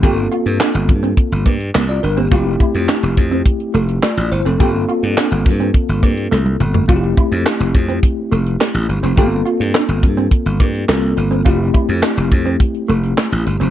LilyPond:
<<
  \new Staff \with { instrumentName = "Tine electric piano" } { \time 4/4 \key f \major \tempo 4 = 105 << { r2. r16 <f' d''>16 <d' bes'>16 <bes g'>16~ | <bes g'>16 r2 r8. <f' d''>8 <e' c''>16 <c' a'>16~ | <c' a'>16 r2. r8. | r1 |
r1 | r1 | } \\ { <bes c' f' a'>2~ <bes c' f' a'>8 r4. | <a c' e' g'>1 | <bes c' f' a'>1 | <a c' e' f' g'>1 |
<a bes c' f' a'>2. <bes c' f' a'>4 | <a c' e' g'>1 | } >> }
  \new Staff \with { instrumentName = "Clean electric guitar" } { \time 4/4 \key f \major g'16 r16 f'16 r16 d'16 r8 c'16 r8 bes16 r16 bes16 r8 c'16 | f'16 r16 e'16 r16 d'16 r8 c'16 r8 a16 r16 a16 r8 c'16 | g'16 r16 f'16 r16 d'16 r8 c'16 r8 bes16 r16 a16 r8 a16 | f'16 r16 e'16 r16 d'16 r8 c'16 r8 a16 r16 a16 r8 c'16 |
g'16 r16 f'16 r16 d'16 r8 c'16 r8 bes16 r16 bes16 r8 c'16 | f'16 r16 e'16 r16 d'16 r8 c'16 r8 a16 r16 a16 r8 c'16 | }
  \new Staff \with { instrumentName = "Slap bass" } { \clef bass \time 4/4 \key f \major g,,8 r16 g,16 r16 g,,16 g,8 r16 g,,16 g,8 c,8 g,,8 | f,,8 r16 f,16 r16 f,,16 f,8 r8 f,,8 r16 a,,16 g,,16 f,,16 | g,,8 r16 g,16 r16 g,,16 g,8 r16 g,,16 g,8 c,8 g,,8 | f,,8 r16 f,16 r16 f,,16 f,8 r8 f,,8 r16 a,,16 g,,16 f,,16 |
g,,8 r16 g,16 r16 g,,16 g,8 r16 g,,16 g,8 c,8 g,,8 | f,,8 r16 f,16 r16 f,,16 f,8 r8 f,,8 r16 a,,16 g,,16 f,,16 | }
  \new DrumStaff \with { instrumentName = "Drums" } \drummode { \time 4/4 <hh bd>16 hh16 hh16 hh16 <hc sn>8 <hh bd>16 hh16 <hh bd>8 <hh bd>16 hh16 <hc sn>16 hh16 hh16 hh16 | <hh bd>8 <hh bd>16 hh16 <hc sn>8 <hh bd>16 hh16 <hh bd>16 hh16 hh16 hh16 <hc sn>8 hh16 hh16 | <hh bd>8 hh16 hh16 <hc sn>16 hh16 <hho bd>16 hh16 <hh bd>16 hh16 <hh bd>16 hh16 sn16 tommh16 toml16 tomfh16 | <hh bd>16 hh16 <hh bd>16 hh16 <hc sn>8 <hh bd>16 hh16 <hh bd>8 hh16 hh16 <hc sn>8 hh16 hh16 |
<hh bd>16 hh16 hh16 hh16 <hc sn>16 hh16 <hh bd>16 hh16 <hh bd>8 <hh bd>16 hh16 <hc sn>8 hh16 hh16 | <hh bd>8 <hh bd>16 hh16 <hc sn>16 hh16 <hh bd>16 hh16 <hh bd>16 hh16 hh16 hh16 <hc sn>8 hh16 hh16 | }
>>